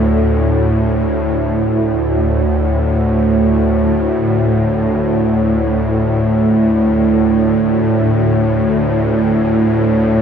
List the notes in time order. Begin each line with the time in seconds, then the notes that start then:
Already playing: D2 A2 A3 D4 A4 D5
1.39 D2 A2 A3
2.39 D4
2.83 A4
6.20 D5